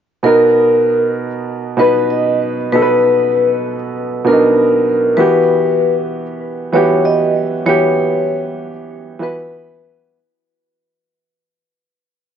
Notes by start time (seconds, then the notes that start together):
0.23 B2 B3 D#4 A#4
1.77 B2 B3 D#4 B4
2.10 D#5
2.72 B2 B3 D#4 A4 B4
2.82 B4
4.24 B2 B3 D4 A#4
4.33 D#4
5.17 E3 B3 F#4 G4 B4
6.73 E3 B3 F#4 G4 C#5
7.05 D#5
7.66 E3 B3 F#4 G4 C#5
9.19 E3 B3 F#4 B4
9.23 B4